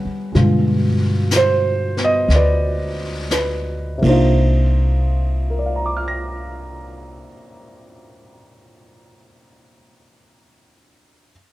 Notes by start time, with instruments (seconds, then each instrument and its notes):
Already playing: grand piano G3 B3 C#4 G4 B4 F#5
0.05 muted upright bass stroke
0.32 upright bass G2, grand piano B2 D3 G#3, brush sweep, snare
0.37 grand piano F4
1.31 snare, hi-hat pedal
1.36 grand piano C5
1.97 grand piano B3, snare
2.04 grand piano D#5
2.28 upright bass D2, brush sweep, snare
2.35 grand piano B4 D5
3.31 grand piano B4, snare, hi-hat pedal
3.98 grand piano C3 A#3
4.02 upright bass C2, grand piano D4, kick, ride
4.07 grand piano D#4 F4 C5
5.50 grand piano A#4
5.59 grand piano D5
5.66 grand piano F5
5.76 grand piano A#5
5.86 grand piano D6
5.97 grand piano F6
6.08 grand piano A#6